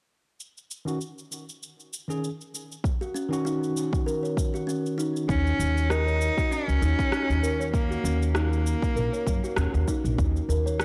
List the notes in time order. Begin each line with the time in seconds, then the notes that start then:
0.40 cabasa
0.57 cabasa
0.71 cabasa
0.85 D#3 C#4 F#4, cabasa
1.01 cabasa
1.18 cabasa
1.32 cabasa
1.49 cabasa
1.63 cabasa
1.80 cabasa
1.93 cabasa
2.08 D#3 C#4 G#4, cabasa
2.24 cabasa
2.41 cabasa
2.55 cabasa
2.72 cabasa
2.84 kick, cabasa
3.01 F#4, cabasa
3.14 C#4, cabasa
3.29 D#3 C#4 F#4, cabasa
3.45 D#4, cabasa
3.63 cabasa
3.77 cabasa
3.93 kick, cabasa
4.06 A#4, cabasa
4.23 C#5, cabasa
4.37 kick, cabasa
4.54 F#4, cabasa
4.67 C#4, cabasa
4.86 cabasa
4.98 D#4, cabasa
5.16 cabasa
5.28 D#2 C#4 D#4, kick, cabasa
5.47 cabasa
5.59 D#2, cabasa
5.77 cabasa
5.90 D#4 A#4, cross-stick, cabasa
6.07 C#5, cabasa
6.21 cabasa
6.37 F#4, kick, cabasa
6.51 C#4, cabasa
6.68 C#2, cabasa
6.82 D#2 D#4, cabasa
6.99 kick, cabasa
7.12 cross-stick, cabasa
7.29 D#2, cabasa
7.43 A#4, cabasa
7.60 C#5, cabasa
7.73 A#3, kick, cabasa
7.91 F#4, cabasa
8.04 D#2 C#4, cabasa
8.22 cabasa
8.35 A#3 D#4, cross-stick, cabasa
8.53 cabasa
8.67 cabasa
8.82 kick, cabasa
8.96 A#1 A#4, cabasa
9.13 C#5, cabasa
9.27 F#2, kick, cabasa
9.44 F#4, cabasa
9.56 D#2 C#4, cross-stick, cabasa
9.74 D#2, cabasa
9.88 D#4, kick, cabasa
10.04 A#1, cabasa
10.18 D#2, kick, cabasa
10.36 cabasa
10.49 D#2 A#4, cabasa
10.66 C#5, cabasa
10.80 C#4, cross-stick, cabasa